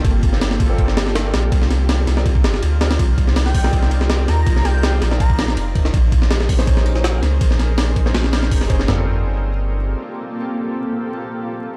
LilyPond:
<<
  \new Staff \with { instrumentName = "Digital synth lead" } { \time 4/4 \key g \minor \tempo 4 = 163 r1 | r1 | r4 r16 g''4 r4 r16 bes''8~ | bes''8 g''8 r4 bes''8. r4 r16 |
r1 | r1 | r1 | r1 | }
  \new Staff \with { instrumentName = "Ambient pad" } { \time 4/4 \key g \minor <bes c' f' g' a'>2. r4 | <ees' f' bes' c'' d''>2. r4 | <ees' f' bes' c'' d''>2. r4 | r1 |
<des' ees' aes' bes' c''>2. r4 | <des' ees' aes' bes' c''>2. r4 | <bes c' f' g' a'>1~ | <bes c' f' g' a'>1 | }
  \new Staff \with { instrumentName = "Grand piano" } { \time 4/4 \key g \minor r4. r16 <g bes c' f' a'>2~ <g bes c' f' a'>16 | r4. r16 <c' ees' f' bes' d''>16 r4. <c' ees' f' bes' d''>16 r16 | r4. r16 <c' ees' f' bes' d''>2~ <c' ees' f' bes' d''>16~ | <c' ees' f' bes' d''>4.~ <c' ees' f' bes' d''>16 <c' ees' f' bes' d''>16 r2 |
r4. r16 <bes des' ees' aes' c''>2~ <bes des' ees' aes' c''>16~ | <bes des' ees' aes' c''>4.~ <bes des' ees' aes' c''>16 <bes des' ees' aes' c''>16 r4. <bes des' ees' aes' c''>16 r16 | <g bes c' f' a'>1~ | <g bes c' f' a'>1 | }
  \new Staff \with { instrumentName = "Sub bass" } { \clef bass \time 4/4 \key g \minor g,,4. g,,2 bes,,8 | c,4. c,4 g,,8 d,4 | c,4. c,2 ees,8 | c,4. bes,,4. f,,8 f,,8 |
bes,,4. bes,,2 des,8 | bes,,4. bes,,4. f,,8 f,,8 | g,,2. r4 | r1 | }
  \new DrumStaff \with { instrumentName = "Drums" } \drummode { \time 4/4 <bd cymr>8 <bd cymr>16 sn16 <cymr sn>16 sn16 <bd cymr>8 <bd cymr>16 sn16 <cymr sn>16 sn16 <cymr sn>8 <cymr sn>8 | <bd cymr>16 sn16 <cymr sn>8 <cymr sn>8 <cymr sn>16 sn16 <bd cymr>16 bd16 <cymr sn>16 sn16 cymr8 <cymr sn>16 <cymr sn>16 | <bd cymr>8 <bd cymr>16 sn16 <cymr sn>16 sn16 <hho bd>16 sn16 <bd cymr>16 sn16 cymr16 sn16 <cymr sn>8 <cymr sn>8 | <bd cymr>16 sn16 <cymr sn>8 <cymr sn>8 <cymr sn>16 sn16 <bd cymr>16 bd16 <cymr sn>16 sn16 cymr8 <bd cymr>16 sn16 |
<bd cymr>8 <bd cymr>16 sn16 <cymr sn>16 sn16 <hho bd>16 sn16 <bd cymr>16 sn16 cymr16 sn16 <cymr sn>8 <cymr sn>8 | <bd cymr>16 sn16 <cymr sn>8 <cymr sn>8 <bd cymr>16 sn16 <cymr sn>16 sn16 <cymr sn>16 sn16 <hho bd>16 sn16 <bd cymr>16 sn16 | <sn tomfh>4 r4 r4 r4 | r4 r4 r4 r4 | }
>>